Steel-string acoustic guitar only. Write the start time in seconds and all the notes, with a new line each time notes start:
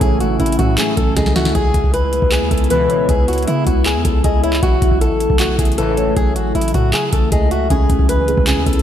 0.01 G#4
0.20 F#4
0.40 E4
0.59 F#4
0.78 G#4
0.97 A4
1.17 G#4
1.36 F#4
1.55 G#4
1.94 B4
2.32 G#4
2.51 A4
2.70 B4
3.09 G#4
3.28 F#4
3.47 E4
3.67 F#4
3.86 G#4
4.05 A4
4.24 G#4
4.43 E4
4.63 F#4
5.01 A4
5.40 F#4
5.59 G#4
5.78 A4
6.16 G#4
6.36 F#4
6.55 E4
6.74 F#4
6.93 G#4
7.13 A4
7.32 G#4
7.51 F#4
7.70 G#4
8.09 B4
8.47 G#4
8.66 A4